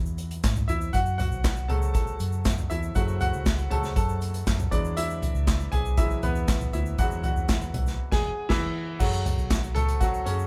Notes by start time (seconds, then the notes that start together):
Already playing: E2 E3 F#3 G#3 E4 E5
0.06 shaker
0.18 closed hi-hat, shaker
0.31 closed hi-hat, shaker
0.43 G#2, kick, snare, clap, closed hi-hat, shaker
0.56 floor tom, shaker
0.68 E2 E4 E5, closed hi-hat, shaker
0.81 shaker
0.93 F#2 F#4 F#5, kick, closed hi-hat, shaker
1.06 shaker
1.18 F#4 F#5, closed hi-hat, floor tom, shaker
1.32 B1, shaker
1.44 kick, snare, clap, closed hi-hat, shaker
1.56 shaker
1.68 C#2 C#3 F#3 A3 A4 A5, closed hi-hat, floor tom
1.82 shaker
1.94 A4 A5, kick, closed hi-hat, shaker
2.07 shaker
2.20 F#2, closed hi-hat, shaker
2.32 shaker
2.45 kick, snare, clap, closed hi-hat, shaker
2.58 floor tom, shaker
2.70 E2 E4 E5, closed hi-hat, shaker
2.83 shaker
2.95 F#2 C#3 F#3 A3 F#4 F#5, kick, closed hi-hat, shaker
3.08 shaker
3.21 F#4 F#5, closed hi-hat, floor tom, shaker
3.33 C#2, shaker
3.46 kick, snare, clap, closed hi-hat, shaker
3.58 shaker
3.70 C#2 C#3 F#3 A3 A4 A5, closed hi-hat, floor tom
3.83 snare, shaker
3.96 F#2 A4 A5, kick, closed hi-hat, shaker
4.09 shaker
4.21 closed hi-hat, shaker
4.34 closed hi-hat, shaker
4.47 F#2, kick, snare, clap, closed hi-hat, shaker
4.59 floor tom, shaker
4.71 E2 E3 F#3 G#3 D4 D5, kick, closed hi-hat, shaker
4.85 shaker
4.97 E4 E5, closed hi-hat, shaker
5.10 shaker
5.22 closed hi-hat, floor tom, shaker
5.35 C#2, shaker
5.47 kick, snare, clap, closed hi-hat, shaker
5.60 shaker
5.72 B1 G#4 G#5, closed hi-hat, floor tom
5.85 shaker
5.97 E3 F#3 G#3 E4 E5, kick, closed hi-hat, shaker
6.10 shaker
6.23 E2 B3 B4, closed hi-hat, floor tom, shaker
6.35 shaker
6.48 kick, snare, clap, closed hi-hat, shaker
6.61 floor tom, shaker
6.73 D2 E4 E5, closed hi-hat, shaker
6.86 shaker
6.98 E2 E3 F#3 G#3 F#4 F#5, kick, closed hi-hat, shaker
7.11 shaker
7.23 F#4 F#5, closed hi-hat, floor tom, shaker
7.36 E2, shaker
7.48 kick, snare, clap, closed hi-hat, shaker
7.61 shaker
7.74 B1, closed hi-hat, floor tom
7.86 snare, shaker
8.12 E1 G#4 G#5, kick, snare, crash
8.49 E1 E3 E4, kick, snare, crash
8.99 F#2 C#3 F#3 A3 F#4, kick, crash, shaker
9.13 shaker
9.26 closed hi-hat, floor tom, shaker
9.38 B1, shaker
9.50 kick, snare, clap, closed hi-hat, shaker
9.64 shaker
9.75 C#2 A3 A4, closed hi-hat, floor tom
9.88 closed hi-hat, shaker
10.00 F#3 F#4, kick, closed hi-hat, shaker
10.14 shaker
10.25 F#2 C#3 C#4, closed hi-hat, shaker
10.39 shaker